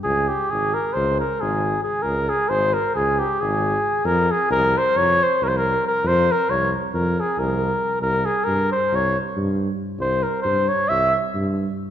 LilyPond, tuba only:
\new Staff \with { instrumentName = "Tuba" } { \clef bass \time 9/8 \tempo 4. = 91 des,4 aes,,4 des,4 aes,,4. | des,4 aes,,4 des,4 aes,,4. | f,4 c,4 f,4 c,4. | f,4 c,4 f,4 c,4. |
c,4 g,4 c,4 g,4. | c,4 g,4 c,4 g,4. | }